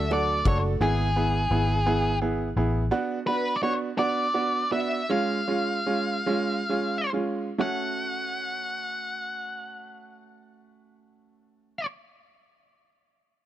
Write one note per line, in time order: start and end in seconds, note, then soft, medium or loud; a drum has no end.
0.00 0.42 D2 loud
0.00 0.11 D3 medium
0.00 0.10 A4 medium
0.00 0.12 E5 loud
0.09 0.45 F#3 medium
0.09 0.46 A3 medium
0.09 0.37 D4 medium
0.09 0.37 F#4 medium
0.09 0.45 F#4 medium
0.09 0.37 A4 medium
0.09 0.43 A4 medium
0.09 0.44 D5 loud
0.09 ride soft
0.44 0.79 F#1 loud
0.44 0.82 A3 medium
0.44 0.72 D4 medium
0.44 0.81 F#4 medium
0.44 0.72 F#4 medium
0.44 0.80 A4 medium
0.44 0.72 A4 medium
0.44 0.57 C#5 loud
0.44 kick medium
0.44 ride soft
0.80 1.47 G#1 loud
0.80 1.07 B3 loud
0.80 1.07 E4 medium
0.80 1.07 G#4 loud
0.80 2.18 G#4 medium
1.16 1.42 B3 medium
1.16 1.42 E4 medium
1.16 1.42 G#4 medium
1.51 2.52 G#1 medium
1.51 1.77 B3 medium
1.51 1.77 E4 medium
1.51 1.77 G#4 medium
1.86 2.12 B3 medium
1.86 2.12 E4 medium
1.86 2.12 G#4 loud
2.22 2.47 B3 medium
2.22 2.47 E4 medium
2.22 2.47 G#4 medium
2.56 2.89 A1 medium
2.56 2.82 B3 medium
2.56 2.83 E4 medium
2.56 2.83 G#4 medium
2.91 3.17 B3 loud
2.91 3.17 D4 medium
2.91 3.18 F#4 loud
3.27 3.53 B3 medium
3.27 3.53 D4 medium
3.27 3.53 F#4 medium
3.27 3.56 B4 medium
3.56 3.62 D5 medium
3.63 3.89 B3 medium
3.63 3.89 D4 medium
3.63 3.89 F#4 medium
3.63 3.72 C#5 medium
3.98 4.25 B3 loud
3.98 4.25 D4 medium
3.98 4.25 F#4 loud
3.98 4.72 D5 loud
4.34 4.61 B3 medium
4.34 4.62 D4 medium
4.34 4.62 F#4 medium
4.71 4.99 B3 medium
4.71 4.99 D4 medium
4.71 4.99 F#4 medium
4.71 5.11 E5 loud
5.09 5.38 G#3 loud
5.09 5.38 C#4 medium
5.09 5.38 F4 loud
5.09 7.11 F5 loud
5.48 5.77 G#3 medium
5.48 5.77 C#4 medium
5.48 5.77 F4 medium
5.86 6.17 G#3 medium
5.86 6.17 C#4 medium
5.86 6.17 F4 medium
6.26 6.58 G#3 loud
6.26 6.59 C#4 medium
6.26 6.59 F4 medium
6.69 7.02 G#3 medium
6.69 7.02 C#4 medium
6.69 7.02 F4 medium
7.13 7.47 G#3 medium
7.13 7.47 C#4 medium
7.13 7.47 F4 medium
7.58 11.83 A3 medium
7.58 11.84 C#4 medium
7.58 11.84 F#4 loud
7.58 11.86 F#5 loud